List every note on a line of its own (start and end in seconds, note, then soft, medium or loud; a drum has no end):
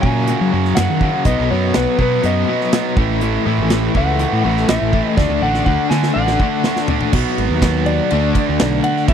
0.02 0.27 F#2 medium
0.02 0.33 A#2 loud
0.02 0.27 C#3 medium
0.02 0.28 F#3 medium
0.02 0.72 G#5 loud
0.02 kick medium
0.27 0.51 F#2 medium
0.27 0.52 C#3 loud
0.27 0.52 F#3 loud
0.27 closed hi-hat medium
0.41 0.51 F#3 medium
0.52 0.76 F#2 medium
0.52 0.73 F#2 medium
0.52 0.76 C#3 medium
0.52 0.77 F#3 medium
0.65 snare soft
0.75 1.00 F#2 medium
0.75 0.87 F#2 medium
0.75 1.01 C#3 medium
0.75 1.01 F#3 medium
0.75 1.27 F#5 loud
0.75 snare loud
0.75 closed hi-hat medium
0.89 1.09 D#3 medium
1.01 1.24 F#2 medium
1.01 1.25 C#3 loud
1.01 1.25 F#3 medium
1.01 kick medium
1.25 1.35 B1 loud
1.25 1.49 B2 medium
1.25 1.50 F#3 loud
1.25 1.50 B3 loud
1.25 1.51 D#5 loud
1.25 kick loud
1.25 closed hi-hat medium
1.40 1.49 B1 loud
1.50 1.71 F#2 loud
1.50 1.73 B2 medium
1.50 1.74 F#3 medium
1.50 1.74 B3 medium
1.50 1.76 C#5 medium
1.74 1.86 B1 medium
1.74 1.97 B2 medium
1.74 1.97 F#3 medium
1.74 1.98 B3 medium
1.74 2.00 B4 medium
1.74 snare loud
1.74 closed hi-hat medium
1.98 2.21 B2 loud
1.98 2.19 B2 medium
1.98 2.21 F#3 medium
1.98 2.21 B3 loud
1.98 2.26 B4 medium
1.98 kick medium
2.22 2.43 F#2 medium
2.22 2.46 B2 medium
2.22 2.46 F#3 loud
2.22 2.47 B3 loud
2.22 2.94 D#5 medium
2.22 closed hi-hat medium
2.47 2.72 B2 medium
2.47 2.72 F#3 medium
2.47 2.72 B3 medium
2.61 snare soft
2.73 2.96 B2 medium
2.73 2.96 F#3 medium
2.73 2.96 B3 loud
2.73 snare loud
2.73 closed hi-hat medium
2.97 3.37 A1 medium
2.97 3.20 A2 loud
2.97 3.20 E3 loud
2.97 3.21 A3 loud
2.97 kick loud
3.21 3.44 A2 loud
3.21 3.45 E3 loud
3.21 3.46 A3 loud
3.21 closed hi-hat medium
3.45 3.69 A2 medium
3.45 3.59 A2 medium
3.45 3.69 E3 loud
3.45 3.71 A3 medium
3.58 3.88 A1 medium
3.70 3.93 A2 medium
3.70 3.94 E3 loud
3.70 3.95 A3 loud
3.70 snare loud
3.70 closed hi-hat medium
3.94 4.25 C#2 medium
3.94 4.18 A2 loud
3.94 4.19 E3 loud
3.94 4.19 A3 medium
3.94 4.66 F#5 medium
3.94 kick medium
4.19 4.43 A2 medium
4.19 4.43 E3 loud
4.19 4.43 A3 loud
4.19 closed hi-hat medium
4.33 4.42 A2 medium
4.44 4.64 A1 loud
4.44 4.67 A2 medium
4.44 4.68 E3 medium
4.44 4.68 A3 medium
4.57 snare soft
4.68 4.79 A1 medium
4.68 4.91 A2 medium
4.68 4.92 E3 loud
4.68 4.92 A3 loud
4.68 5.06 E5 loud
4.68 snare loud
4.68 closed hi-hat medium
4.82 5.01 A1 medium
4.93 5.16 A2 medium
4.93 5.16 E3 loud
4.93 5.16 A3 loud
4.93 kick medium
5.06 5.17 D#5 loud
5.17 5.27 D2 loud
5.17 5.41 D3 medium
5.17 5.42 A3 loud
5.17 5.42 D4 loud
5.17 5.43 D5 medium
5.17 kick loud
5.17 snare medium
5.29 5.39 D2 loud
5.29 high tom medium
5.41 5.61 A1 medium
5.41 5.65 D3 medium
5.41 5.66 A3 medium
5.41 5.67 D4 medium
5.41 5.64 F#5 loud
5.54 snare medium
5.65 5.77 D2 medium
5.65 5.90 D3 medium
5.65 5.90 A3 medium
5.65 5.91 D4 medium
5.65 5.89 F#5 medium
5.65 kick medium
5.90 6.11 D3 medium
5.90 6.14 D3 loud
5.90 6.15 A3 medium
5.90 6.15 D4 loud
5.90 6.13 G#5 loud
5.90 snare medium
6.03 snare medium
6.14 6.35 A1 loud
6.14 6.39 D3 loud
6.14 6.39 A3 medium
6.14 6.40 D4 loud
6.14 6.84 F#5 medium
6.27 snare medium
6.40 6.63 D3 medium
6.40 6.64 A3 medium
6.40 6.65 D4 medium
6.40 kick medium
6.64 6.89 D3 medium
6.64 6.89 A3 medium
6.64 6.90 D4 medium
6.64 snare loud
6.76 snare medium
6.88 7.12 D3 loud
6.88 7.13 A3 loud
6.88 7.13 D4 loud
6.88 floor tom loud
7.01 floor tom medium
7.13 7.23 B1 loud
7.13 8.09 B2 medium
7.13 8.10 F#3 loud
7.13 8.11 B3 loud
7.13 kick loud
7.13 crash loud
7.38 7.48 G#1 medium
7.38 ride medium
7.50 7.99 D#2 medium
7.62 kick medium
7.62 snare loud
7.62 ride loud
7.86 8.87 D5 loud
7.86 ride medium
8.11 8.31 D2 loud
8.11 9.07 D3 medium
8.11 9.08 A3 medium
8.11 9.08 D4 loud
8.11 ride loud
8.35 kick medium
8.35 ride medium
8.49 8.58 D2 medium
8.60 8.80 B1 loud
8.60 snare loud
8.60 ride loud
8.84 9.07 F#5 loud
8.84 ride medium
8.97 snare soft
9.08 9.13 A1 loud
9.08 9.13 A2 loud
9.08 9.13 E3 loud
9.08 9.13 E5 loud
9.08 kick loud
9.08 ride loud